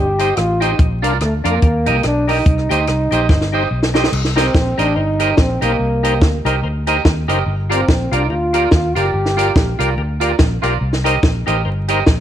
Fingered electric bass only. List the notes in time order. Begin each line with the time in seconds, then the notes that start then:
Already playing: G1
0.37 A1
0.79 A#1
1.03 C2
1.21 D2
1.45 F2
1.63 D#2
1.87 C2
2.04 B1
2.46 C2
2.70 D2
2.88 C2
3.11 A#1
3.29 G1
3.71 B1
4.12 C2
4.55 A#1
4.78 A1
4.96 G1
5.38 A#1
5.62 B1
5.79 C2
6.21 D2
6.45 C2
6.63 D2
7.05 D#2
7.28 F#1
7.46 G1
7.88 A#1
8.12 C2
8.30 D2
8.72 D#2
8.95 F#1
9.14 G1
9.56 A#1
9.79 C2
9.96 D2
10.39 A#1
10.63 B1
10.81 C2
11.23 A#1
11.47 A1
11.65 G1
12.07 A#1